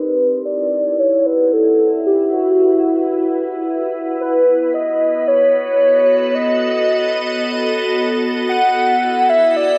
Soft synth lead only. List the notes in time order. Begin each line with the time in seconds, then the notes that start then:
Already playing: B4
0.45 D5
0.99 C#5
1.26 B4
1.53 A4
2.06 G4
2.33 F#4
4.21 B4
4.74 D#5
5.28 C#5
6.35 D#5
8.49 F#5
9.29 E5
9.56 D5